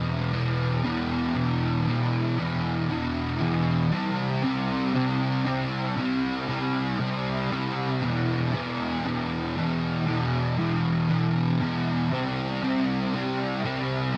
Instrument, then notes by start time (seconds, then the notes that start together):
distorted electric guitar
Already playing: E2 B2 E3
0.31 E2 B2 E3
0.83 E2 B2 E3
1.35 E2 B2 E3
1.87 E2 B2 E3
2.37 E2 B2 E3
2.89 E2 B2 E3
3.40 E2 B2 E3
3.92 C3 G3 C4
4.43 C3 G3 C4
4.94 C3 G3 C4
5.45 C3 G3 C4
5.96 C3 G3 C4
6.48 C3 G3 C4
6.99 C3 G3 C4
7.50 C3 G3 C4
8.01 E2 B2 E3
8.53 E2 B2 E3
9.05 E2 B2 E3
9.56 E2 B2 E3
10.06 E2 B2 E3
10.58 E2 B2 E3
11.09 E2 B2 E3
11.60 E2 B2 E3
12.11 C3 G3 C4
12.62 C3 G3 C4
13.14 C3 G3 C4
13.63 C3 G3 C4